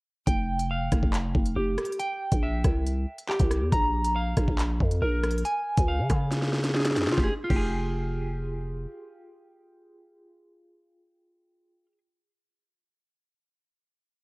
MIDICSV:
0, 0, Header, 1, 4, 480
1, 0, Start_track
1, 0, Key_signature, -4, "minor"
1, 0, Tempo, 431655
1, 300, Time_signature, 4, 2, 24, 8
1, 15829, End_track
2, 0, Start_track
2, 0, Title_t, "Clean electric guitar"
2, 0, Program_c, 0, 27
2, 299, Note_on_c, 0, 79, 112
2, 785, Note_on_c, 0, 77, 100
2, 1741, Note_on_c, 0, 67, 88
2, 2208, Note_off_c, 0, 79, 0
2, 2221, Note_off_c, 0, 67, 0
2, 2221, Note_on_c, 0, 79, 119
2, 2223, Note_off_c, 0, 77, 0
2, 2701, Note_on_c, 0, 76, 97
2, 3658, Note_on_c, 0, 67, 90
2, 4136, Note_off_c, 0, 79, 0
2, 4139, Note_off_c, 0, 67, 0
2, 4141, Note_off_c, 0, 76, 0
2, 4141, Note_on_c, 0, 82, 112
2, 4624, Note_on_c, 0, 77, 92
2, 5580, Note_on_c, 0, 70, 95
2, 6056, Note_off_c, 0, 82, 0
2, 6060, Note_off_c, 0, 70, 0
2, 6060, Note_on_c, 0, 80, 108
2, 6062, Note_off_c, 0, 77, 0
2, 6538, Note_on_c, 0, 77, 94
2, 7498, Note_on_c, 0, 68, 92
2, 7914, Note_on_c, 0, 65, 88
2, 7976, Note_off_c, 0, 68, 0
2, 7979, Note_off_c, 0, 77, 0
2, 7980, Note_off_c, 0, 80, 0
2, 7980, Note_on_c, 0, 67, 78
2, 8047, Note_on_c, 0, 68, 93
2, 8079, Note_off_c, 0, 65, 0
2, 8114, Note_off_c, 0, 67, 0
2, 8150, Note_off_c, 0, 68, 0
2, 8273, Note_on_c, 0, 65, 90
2, 8340, Note_on_c, 0, 67, 83
2, 8407, Note_on_c, 0, 68, 98
2, 13187, Note_off_c, 0, 65, 0
2, 13254, Note_off_c, 0, 67, 0
2, 13321, Note_off_c, 0, 68, 0
2, 15829, End_track
3, 0, Start_track
3, 0, Title_t, "808-style bass"
3, 0, Program_c, 1, 38
3, 300, Note_on_c, 1, 29, 109
3, 992, Note_off_c, 1, 29, 0
3, 1020, Note_on_c, 1, 29, 110
3, 1136, Note_off_c, 1, 29, 0
3, 1141, Note_on_c, 1, 29, 102
3, 1487, Note_off_c, 1, 29, 0
3, 1500, Note_on_c, 1, 29, 107
3, 1731, Note_off_c, 1, 29, 0
3, 1741, Note_on_c, 1, 29, 108
3, 1971, Note_off_c, 1, 29, 0
3, 2581, Note_on_c, 1, 34, 105
3, 2926, Note_off_c, 1, 34, 0
3, 2940, Note_on_c, 1, 36, 108
3, 3401, Note_off_c, 1, 36, 0
3, 3780, Note_on_c, 1, 36, 108
3, 4021, Note_on_c, 1, 40, 99
3, 4037, Note_off_c, 1, 36, 0
3, 4135, Note_off_c, 1, 40, 0
3, 4141, Note_on_c, 1, 34, 109
3, 4832, Note_off_c, 1, 34, 0
3, 4860, Note_on_c, 1, 34, 110
3, 4976, Note_off_c, 1, 34, 0
3, 4981, Note_on_c, 1, 34, 103
3, 5326, Note_off_c, 1, 34, 0
3, 5340, Note_on_c, 1, 41, 105
3, 5571, Note_off_c, 1, 41, 0
3, 5580, Note_on_c, 1, 34, 105
3, 6041, Note_off_c, 1, 34, 0
3, 6420, Note_on_c, 1, 37, 109
3, 6660, Note_on_c, 1, 49, 105
3, 6677, Note_off_c, 1, 37, 0
3, 6775, Note_off_c, 1, 49, 0
3, 6780, Note_on_c, 1, 49, 112
3, 7740, Note_on_c, 1, 41, 97
3, 7757, Note_off_c, 1, 49, 0
3, 7860, Note_on_c, 1, 49, 100
3, 7877, Note_off_c, 1, 41, 0
3, 7974, Note_off_c, 1, 49, 0
3, 7980, Note_on_c, 1, 29, 105
3, 8114, Note_off_c, 1, 29, 0
3, 8341, Note_on_c, 1, 29, 109
3, 9856, Note_off_c, 1, 29, 0
3, 15829, End_track
4, 0, Start_track
4, 0, Title_t, "Drums"
4, 300, Note_on_c, 9, 36, 118
4, 300, Note_on_c, 9, 42, 88
4, 412, Note_off_c, 9, 36, 0
4, 412, Note_off_c, 9, 42, 0
4, 658, Note_on_c, 9, 42, 92
4, 769, Note_off_c, 9, 42, 0
4, 1018, Note_on_c, 9, 42, 87
4, 1020, Note_on_c, 9, 36, 100
4, 1021, Note_on_c, 9, 37, 92
4, 1129, Note_off_c, 9, 42, 0
4, 1131, Note_off_c, 9, 36, 0
4, 1133, Note_off_c, 9, 37, 0
4, 1141, Note_on_c, 9, 36, 98
4, 1252, Note_off_c, 9, 36, 0
4, 1261, Note_on_c, 9, 39, 124
4, 1265, Note_on_c, 9, 42, 81
4, 1372, Note_off_c, 9, 39, 0
4, 1377, Note_off_c, 9, 42, 0
4, 1500, Note_on_c, 9, 36, 97
4, 1612, Note_off_c, 9, 36, 0
4, 1620, Note_on_c, 9, 42, 67
4, 1731, Note_off_c, 9, 42, 0
4, 1981, Note_on_c, 9, 37, 99
4, 1981, Note_on_c, 9, 42, 45
4, 2061, Note_off_c, 9, 42, 0
4, 2061, Note_on_c, 9, 42, 59
4, 2093, Note_off_c, 9, 37, 0
4, 2141, Note_off_c, 9, 42, 0
4, 2141, Note_on_c, 9, 42, 68
4, 2221, Note_off_c, 9, 42, 0
4, 2221, Note_on_c, 9, 42, 86
4, 2332, Note_off_c, 9, 42, 0
4, 2578, Note_on_c, 9, 42, 97
4, 2581, Note_on_c, 9, 36, 102
4, 2689, Note_off_c, 9, 42, 0
4, 2692, Note_off_c, 9, 36, 0
4, 2939, Note_on_c, 9, 42, 92
4, 2941, Note_on_c, 9, 36, 102
4, 2942, Note_on_c, 9, 37, 94
4, 3050, Note_off_c, 9, 42, 0
4, 3052, Note_off_c, 9, 36, 0
4, 3053, Note_off_c, 9, 37, 0
4, 3186, Note_on_c, 9, 42, 73
4, 3297, Note_off_c, 9, 42, 0
4, 3541, Note_on_c, 9, 42, 68
4, 3652, Note_off_c, 9, 42, 0
4, 3661, Note_on_c, 9, 39, 120
4, 3772, Note_off_c, 9, 39, 0
4, 3775, Note_on_c, 9, 42, 86
4, 3781, Note_on_c, 9, 36, 99
4, 3886, Note_off_c, 9, 42, 0
4, 3892, Note_off_c, 9, 36, 0
4, 3902, Note_on_c, 9, 37, 98
4, 3906, Note_on_c, 9, 42, 75
4, 4013, Note_off_c, 9, 37, 0
4, 4017, Note_off_c, 9, 42, 0
4, 4141, Note_on_c, 9, 36, 124
4, 4141, Note_on_c, 9, 42, 86
4, 4252, Note_off_c, 9, 36, 0
4, 4252, Note_off_c, 9, 42, 0
4, 4498, Note_on_c, 9, 42, 98
4, 4610, Note_off_c, 9, 42, 0
4, 4858, Note_on_c, 9, 42, 90
4, 4860, Note_on_c, 9, 36, 101
4, 4861, Note_on_c, 9, 37, 92
4, 4969, Note_off_c, 9, 42, 0
4, 4972, Note_off_c, 9, 36, 0
4, 4973, Note_off_c, 9, 37, 0
4, 4981, Note_on_c, 9, 36, 100
4, 5092, Note_off_c, 9, 36, 0
4, 5101, Note_on_c, 9, 39, 120
4, 5105, Note_on_c, 9, 42, 81
4, 5212, Note_off_c, 9, 39, 0
4, 5216, Note_off_c, 9, 42, 0
4, 5340, Note_on_c, 9, 36, 95
4, 5451, Note_off_c, 9, 36, 0
4, 5460, Note_on_c, 9, 42, 67
4, 5571, Note_off_c, 9, 42, 0
4, 5820, Note_on_c, 9, 42, 44
4, 5821, Note_on_c, 9, 37, 101
4, 5900, Note_off_c, 9, 42, 0
4, 5900, Note_on_c, 9, 42, 59
4, 5932, Note_off_c, 9, 37, 0
4, 5980, Note_off_c, 9, 42, 0
4, 5980, Note_on_c, 9, 42, 71
4, 6060, Note_off_c, 9, 42, 0
4, 6060, Note_on_c, 9, 42, 88
4, 6171, Note_off_c, 9, 42, 0
4, 6418, Note_on_c, 9, 42, 94
4, 6420, Note_on_c, 9, 36, 101
4, 6529, Note_off_c, 9, 42, 0
4, 6532, Note_off_c, 9, 36, 0
4, 6778, Note_on_c, 9, 42, 91
4, 6780, Note_on_c, 9, 36, 102
4, 6781, Note_on_c, 9, 37, 95
4, 6889, Note_off_c, 9, 42, 0
4, 6891, Note_off_c, 9, 36, 0
4, 6893, Note_off_c, 9, 37, 0
4, 7021, Note_on_c, 9, 38, 66
4, 7025, Note_on_c, 9, 42, 77
4, 7081, Note_off_c, 9, 38, 0
4, 7081, Note_on_c, 9, 38, 56
4, 7137, Note_off_c, 9, 42, 0
4, 7140, Note_off_c, 9, 38, 0
4, 7140, Note_on_c, 9, 38, 75
4, 7201, Note_off_c, 9, 38, 0
4, 7201, Note_on_c, 9, 38, 66
4, 7260, Note_off_c, 9, 38, 0
4, 7260, Note_on_c, 9, 38, 78
4, 7320, Note_off_c, 9, 38, 0
4, 7320, Note_on_c, 9, 38, 71
4, 7380, Note_off_c, 9, 38, 0
4, 7380, Note_on_c, 9, 38, 82
4, 7380, Note_on_c, 9, 42, 66
4, 7440, Note_off_c, 9, 38, 0
4, 7440, Note_on_c, 9, 38, 73
4, 7491, Note_off_c, 9, 42, 0
4, 7500, Note_off_c, 9, 38, 0
4, 7500, Note_on_c, 9, 38, 94
4, 7561, Note_off_c, 9, 38, 0
4, 7561, Note_on_c, 9, 38, 80
4, 7615, Note_on_c, 9, 42, 87
4, 7620, Note_off_c, 9, 38, 0
4, 7620, Note_on_c, 9, 38, 99
4, 7681, Note_off_c, 9, 38, 0
4, 7681, Note_on_c, 9, 38, 91
4, 7726, Note_off_c, 9, 42, 0
4, 7741, Note_off_c, 9, 38, 0
4, 7741, Note_on_c, 9, 38, 107
4, 7745, Note_on_c, 9, 42, 78
4, 7801, Note_off_c, 9, 38, 0
4, 7801, Note_on_c, 9, 38, 98
4, 7856, Note_off_c, 9, 42, 0
4, 7861, Note_off_c, 9, 38, 0
4, 7861, Note_on_c, 9, 38, 110
4, 7921, Note_off_c, 9, 38, 0
4, 7921, Note_on_c, 9, 38, 94
4, 7981, Note_off_c, 9, 38, 0
4, 7981, Note_on_c, 9, 36, 110
4, 7981, Note_on_c, 9, 38, 92
4, 8092, Note_off_c, 9, 36, 0
4, 8092, Note_off_c, 9, 38, 0
4, 8341, Note_on_c, 9, 36, 109
4, 8341, Note_on_c, 9, 49, 93
4, 8452, Note_off_c, 9, 36, 0
4, 8452, Note_off_c, 9, 49, 0
4, 15829, End_track
0, 0, End_of_file